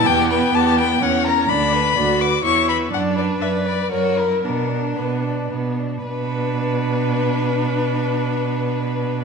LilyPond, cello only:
\new Staff \with { instrumentName = "Cello" } { \clef bass \time 3/4 \key b \minor \tempo 4 = 115 e,4 e,4 e,4 | d,4 d,4 e,4 | fis,4 fis,4 fis,4 | b,4 b,4 b,4 |
b,2.~ | b,2. | }